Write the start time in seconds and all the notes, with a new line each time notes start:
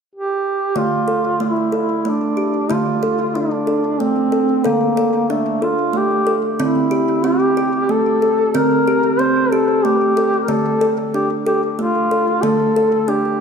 0.15 G4
0.76 D3 A3 F4
1.08 A4
1.40 A3
1.44 E4
1.72 A4
1.77 E4
2.05 A3 D4
2.37 G4
2.70 D3 A3 F4
3.03 A4
3.35 D4
3.67 A4
4.00 A3 C4
4.32 A4
4.64 D3 A#3 A4
4.97 A4
5.30 A3 D4
5.62 F4 A4
5.93 A3 G4
6.27 A4
6.59 D3 C4 E4
6.91 G4
7.24 C4 G4
7.57 G4
7.89 A3 A4
8.22 A4
8.54 D3 C4 A#4
8.87 G4
9.19 C4 C5
9.51 G4 A4
9.84 A3 G4
10.17 A4
10.42 A#4
10.48 D3 A3 A4
10.81 A4
11.14 D4 G4
11.46 G4 A4
11.78 A3 F4
12.11 A4
12.42 D3 A3 A4
12.76 A4
13.08 D4 G4